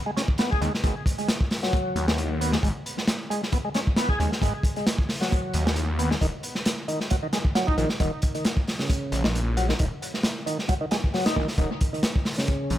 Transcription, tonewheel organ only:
0.06 0.11 G#3 loud
0.17 0.22 C#4 loud
0.39 0.50 B3 medium
0.51 0.61 G#4 loud
0.61 0.73 G#3 loud
0.83 0.95 G#3 medium
1.18 1.28 G#3 medium
1.63 2.06 F#3 medium
2.08 2.12 G#3 medium
2.41 2.51 B3 medium
2.53 2.57 G#3 medium
2.63 2.68 G#3 medium
3.30 3.42 G#3 loud
3.53 3.58 B3 medium
3.65 3.69 G#3 loud
3.75 3.80 C#4 loud
3.97 4.09 B3 medium
4.09 4.19 G#4 loud
4.20 4.31 G#3 loud
4.42 4.53 G#3 medium
4.77 4.86 G#3 medium
5.21 5.65 F#3 medium
5.66 5.71 G#3 medium
5.99 6.10 B3 medium
6.11 6.15 G#3 medium
6.21 6.27 D#3 medium
6.88 7.00 D#3 loud
7.11 7.16 F#3 medium
7.23 7.27 D#3 loud
7.33 7.38 G#3 loud
7.55 7.67 F#3 medium
7.67 7.77 D#4 loud
7.78 7.89 D#3 loud
8.00 8.12 D#3 medium
8.35 8.44 D#3 medium
8.80 9.23 C#3 medium
9.24 9.29 D#3 medium
9.57 9.68 F#3 medium
9.69 9.74 D#3 medium
9.80 9.85 D#3 medium
10.46 10.58 D#3 loud
10.69 10.74 F#3 medium
10.81 10.86 D#3 loud
10.91 10.97 G#3 loud
11.14 11.25 F#3 medium
11.26 11.35 D#4 loud
11.36 11.47 D#3 loud
11.58 11.70 D#3 medium
11.93 12.03 D#3 medium
12.38 12.78 C#3 medium

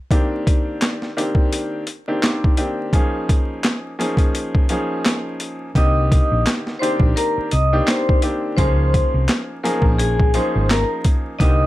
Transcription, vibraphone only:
5.76 6.42 D#5 loud
5.76 6.43 D#6 medium
6.79 6.98 C5 medium
6.79 6.99 C6 medium
7.16 7.48 A#4 medium
7.16 7.49 A#5 medium
7.52 7.84 D#5 medium
7.52 7.84 D#6 medium
7.86 8.19 C5 medium
7.86 8.19 C6 medium
8.57 9.24 C5 loud
8.57 9.24 C6 medium
9.63 9.82 A#4 medium
9.63 9.82 A#5 medium
9.99 10.31 G#4 medium
9.99 10.31 G#5 medium
10.34 10.66 C5 medium
10.34 10.67 C6 medium
10.70 11.01 A#4 medium
10.70 11.02 A#5 medium
11.39 11.66 D#5 loud
11.39 11.66 D#6 medium

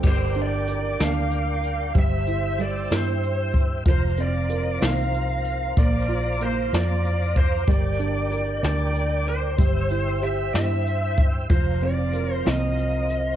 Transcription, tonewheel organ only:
0.04 1.93 A#4 medium
0.04 1.93 D5 medium
0.04 1.93 G5 medium
0.04 1.93 D6 medium
1.94 3.84 C5 medium
1.94 3.84 E5 medium
1.94 3.84 G5 medium
1.94 3.84 E6 medium
3.85 7.64 C5 medium
3.85 7.64 F5 medium
3.85 7.64 A#5 medium
5.78 9.56 D6 medium
7.69 9.58 A#4 medium
7.69 9.58 D5 medium
7.69 11.47 G5 medium
9.59 13.36 C5 medium
9.59 11.48 E5 medium
9.59 11.48 E6 medium
11.49 13.36 F5 medium
11.49 13.36 A#5 medium

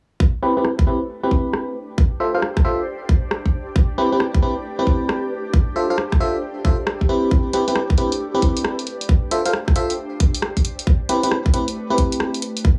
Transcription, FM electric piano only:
0.43 0.54 C4 medium
0.43 0.54 E4 medium
0.43 0.54 G4 medium
0.43 0.54 B4 loud
0.57 0.69 C4 medium
0.57 0.69 E4 medium
0.57 0.69 G4 medium
0.57 0.69 B4 medium
0.87 0.99 C4 medium
0.87 0.99 E4 medium
0.87 0.99 G4 medium
0.87 0.99 B4 medium
1.23 1.75 C4 medium
1.23 1.75 E4 medium
1.23 1.75 G4 medium
1.23 1.75 B4 medium
2.20 2.31 F4 medium
2.20 2.31 A4 medium
2.20 2.31 C5 medium
2.20 2.31 E5 medium
2.35 2.41 F4 medium
2.35 2.41 A4 medium
2.35 2.41 C5 medium
2.35 2.41 F5 medium
2.65 2.82 F4 medium
2.65 2.82 A4 medium
2.65 2.82 C5 medium
2.65 2.82 E5 loud
3.98 4.10 C4 medium
3.98 4.10 E4 medium
3.98 4.10 G4 medium
3.98 4.10 B4 loud
4.12 4.25 C4 medium
4.12 4.25 E4 medium
4.12 4.25 G4 medium
4.12 4.25 B4 medium
4.42 4.54 C4 medium
4.42 4.54 E4 medium
4.42 4.54 G4 medium
4.42 4.54 B4 medium
4.79 5.30 C4 medium
4.79 5.30 E4 medium
4.79 5.30 G4 medium
4.79 5.30 B4 medium
5.76 5.87 F4 medium
5.76 5.87 A4 medium
5.76 5.87 C5 medium
5.76 5.87 E5 medium
5.90 5.97 F4 medium
5.90 5.97 A4 medium
5.90 5.97 C5 medium
5.90 5.97 F5 medium
6.20 6.37 F4 medium
6.20 6.37 A4 medium
6.20 6.37 C5 medium
6.20 6.37 E5 loud
6.65 6.77 F4 medium
6.65 6.77 A4 medium
6.65 6.77 C5 medium
6.65 6.77 E5 medium
7.09 7.52 C4 medium
7.09 7.52 E4 medium
7.09 7.52 G4 medium
7.09 7.52 B4 medium
7.54 7.65 C4 medium
7.54 7.65 E4 medium
7.54 7.65 G4 medium
7.54 7.65 B4 loud
7.68 7.80 C4 medium
7.68 7.80 E4 medium
7.68 7.80 G4 medium
7.68 7.80 B4 medium
7.98 8.10 C4 medium
7.98 8.10 E4 medium
7.98 8.10 G4 medium
7.98 8.10 B4 medium
8.35 8.86 C4 medium
8.35 8.86 E4 medium
8.35 8.86 G4 medium
8.35 8.86 B4 medium
9.31 9.42 F4 medium
9.31 9.42 A4 medium
9.31 9.42 C5 medium
9.31 9.42 E5 medium
9.46 9.52 F4 medium
9.46 9.52 A4 medium
9.46 9.52 C5 medium
9.46 9.52 F5 medium
9.76 9.93 F4 loud
9.76 9.93 A4 medium
9.76 9.93 C5 medium
9.76 9.93 E5 loud
11.09 11.21 C4 medium
11.09 11.21 E4 medium
11.09 11.21 G4 medium
11.09 11.21 B4 loud
11.24 11.36 C4 medium
11.24 11.36 E4 medium
11.24 11.36 G4 medium
11.24 11.36 B4 medium
11.54 11.65 C4 medium
11.54 11.65 E4 medium
11.54 11.65 G4 medium
11.54 11.65 B4 medium
11.90 12.42 C4 medium
11.90 12.42 E4 medium
11.90 12.42 G4 medium
11.90 12.42 B4 medium

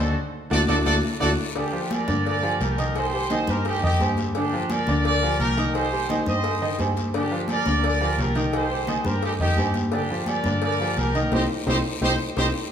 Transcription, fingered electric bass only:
0.00 0.14 D2 loud
0.51 0.64 D2 loud
0.69 0.82 D2 loud
0.87 0.99 D2 loud
1.22 1.34 D2 loud
2.08 2.57 G2 loud
2.61 3.42 C2 medium
3.48 3.80 G2 medium
3.83 3.99 F2 medium
4.01 4.82 G2 loud
4.87 5.36 D2 loud
5.39 6.21 C2 medium
6.27 6.75 G2 medium
6.79 7.61 G2 medium
7.66 8.15 D2 loud
8.18 9.00 C2 medium
9.05 9.38 G2 loud
9.39 9.56 F2 medium
9.57 10.39 G2 loud
10.45 10.94 G2 loud
10.97 11.30 C2 loud
11.32 11.45 C2 loud
11.67 11.80 C2 loud
12.01 12.15 C2 loud
12.37 12.50 C2 loud

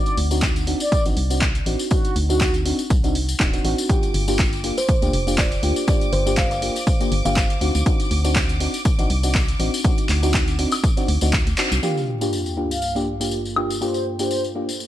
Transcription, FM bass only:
0.18 0.75 D2 loud
1.06 1.14 A1 medium
1.17 1.61 C2 loud
1.66 1.76 A1 medium
2.16 2.73 D2 loud
2.90 3.35 C2 medium
3.40 3.59 D1 medium
3.65 3.75 A1 loud
4.14 4.72 G1 loud
5.02 5.10 D2 medium
5.13 5.58 F1 loud
5.63 5.73 D2 medium
6.13 6.70 G1 loud
7.12 7.22 G1 loud
7.25 7.57 G1 medium
7.61 7.71 D2 medium
7.75 7.83 D2 medium
8.11 8.68 D2 loud
8.99 9.07 A1 medium
9.10 9.55 C2 loud
9.60 9.70 A1 medium
10.09 10.67 D2 loud
11.08 11.18 D2 loud
11.22 11.46 D2 medium
11.47 11.55 D2 medium
11.72 11.80 C2 medium

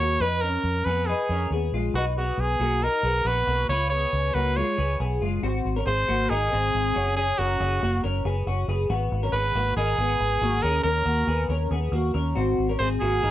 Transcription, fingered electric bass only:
0.00 0.16 D#2 medium
0.20 0.56 F2 loud
0.64 0.82 F2 loud
0.86 1.13 F2 medium
1.29 1.47 F2 medium
1.51 1.69 D#2 medium
1.72 1.91 A#1 medium
1.94 2.30 B1 loud
2.38 2.56 B1 loud
2.60 2.87 B1 loud
3.03 3.21 B1 medium
3.25 3.43 A#1 loud
3.47 3.65 B1 medium
3.69 4.05 C#2 loud
4.13 4.31 C#2 loud
4.34 4.61 C#2 medium
4.78 4.96 C#2 medium
5.00 5.18 B1 medium
5.21 5.39 F#1 medium
5.43 5.61 G#1 loud
5.65 5.83 G#1 medium
5.87 6.04 G#1 loud
6.08 6.26 G#1 medium
6.31 6.48 G#1 loud
6.53 6.70 G#1 loud
6.75 6.92 G#1 loud
6.96 7.31 F#1 loud
7.39 7.56 F#1 loud
7.60 7.78 F#1 loud
7.82 8.00 F#1 loud
8.04 8.21 F#1 loud
8.25 8.43 F#1 loud
8.47 8.65 F#1 loud
8.68 8.86 F#1 loud
8.90 9.08 G#1 loud
9.12 9.30 G#1 loud
9.32 9.51 G#1 loud
9.55 9.73 G#1 loud
9.76 9.94 G#1 loud
9.98 10.16 G#1 loud
10.20 10.38 G#1 loud
10.41 10.59 G#1 loud
10.63 10.81 D#2 loud
10.84 11.02 D#2 loud
11.06 11.24 D#2 loud
11.27 11.46 D#2 loud
11.49 11.67 D#2 loud
11.71 11.89 D#2 loud
11.92 12.10 D#2 loud
12.14 12.33 D#2 loud
12.37 12.55 G#1 loud
12.58 12.76 G#1 medium
12.80 12.98 G#1 loud
13.02 13.19 G#1 loud
13.24 13.31 G#1 loud

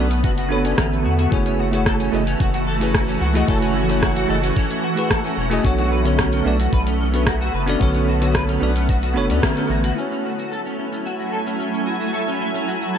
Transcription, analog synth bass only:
0.00 0.25 B1 loud
0.24 0.74 F#1 medium
0.78 1.06 A1 medium
1.05 1.27 E2 medium
1.32 2.09 F#1 loud
2.13 2.36 F#1 loud
2.40 3.18 F#1 medium
3.21 3.44 C#2 medium
3.48 4.26 F#1 loud
4.29 4.52 F#1 loud
5.37 5.60 E1 medium
5.64 6.42 B1 loud
6.46 6.68 B1 loud
6.73 7.50 B1 medium
7.54 7.76 F#1 medium
7.81 8.58 B1 loud
8.62 9.17 B1 medium
9.16 9.31 F#1 medium
9.30 9.41 D2 loud
9.70 9.92 A1 medium

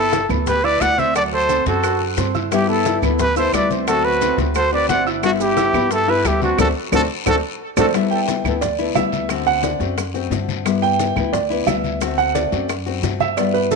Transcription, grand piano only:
0.00 0.10 B5 medium
0.12 0.27 E4 medium
0.12 0.27 E5 medium
0.12 0.27 E6 medium
0.29 0.58 B3 medium
0.29 0.58 B4 medium
0.29 0.58 B5 medium
0.64 0.92 E4 medium
0.64 0.92 E5 medium
0.64 0.92 E6 medium
0.98 1.12 C4 medium
0.98 1.12 C5 medium
0.98 1.12 C6 medium
1.15 1.43 F#3 medium
1.15 1.43 F#4 medium
1.15 1.44 F#5 medium
1.49 1.77 C4 medium
1.49 1.77 C5 medium
1.49 1.77 C6 medium
1.83 2.11 F#4 medium
1.83 2.11 F#5 medium
1.83 2.12 F#6 medium
2.17 2.31 C4 medium
2.17 2.31 C5 medium
2.17 2.31 C6 medium
2.34 2.62 E4 medium
2.34 2.63 E5 medium
2.34 2.63 E6 medium
2.69 2.83 B3 medium
2.69 2.83 B4 medium
2.69 2.83 B5 medium
2.86 3.00 E4 medium
2.86 3.00 E5 medium
2.86 3.00 E6 medium
3.03 3.31 B3 medium
3.03 3.31 B4 medium
3.03 3.31 B5 medium
3.37 3.64 E4 medium
3.37 3.65 E5 medium
3.37 3.65 E6 medium
3.70 3.84 C4 medium
3.70 3.85 C5 medium
3.70 3.85 C6 medium
3.87 4.15 F#3 medium
3.87 4.15 F#4 medium
3.87 4.16 F#5 medium
4.21 4.49 C4 medium
4.21 4.49 C5 medium
4.21 4.49 C6 medium
4.55 4.83 F#4 medium
4.55 4.83 F#5 medium
4.55 4.84 F#6 medium
4.89 5.03 C4 medium
4.89 5.03 C5 medium
4.89 5.04 C6 medium
5.06 5.34 E4 medium
5.06 5.34 E5 medium
5.06 5.34 E6 medium
5.40 5.54 B3 medium
5.40 5.54 B4 medium
5.40 5.54 B5 medium
5.57 5.71 E4 medium
5.57 5.71 E5 medium
5.57 5.71 E6 medium
5.74 6.02 B3 medium
5.74 6.02 B4 medium
5.74 6.02 B5 medium
6.08 6.36 E4 medium
6.08 6.36 E5 medium
6.08 6.36 E6 medium
6.42 6.56 C4 medium
6.42 6.56 C5 medium
6.42 6.56 C6 medium
6.59 6.70 A4 medium
6.59 6.70 C5 medium
6.59 6.70 D5 medium
6.92 7.03 A4 medium
6.92 7.03 C5 loud
6.92 7.03 D5 medium
7.26 7.37 A4 loud
7.26 7.37 C5 loud
7.26 7.37 D5 medium
7.77 7.88 A4 medium
7.77 7.88 C5 medium
7.77 7.88 D5 medium
8.11 8.58 G5 medium
8.61 8.93 D5 medium
8.95 9.43 E5 medium
9.47 9.63 F#5 loud
9.64 9.95 D5 medium
10.82 11.30 G5 loud
11.33 11.65 D5 medium
11.67 12.15 E5 medium
12.18 12.35 F#5 loud
12.35 12.67 D5 medium
13.21 13.37 E5 medium
13.37 13.54 D5 medium
13.54 13.71 B4 medium
13.71 13.76 A4 medium

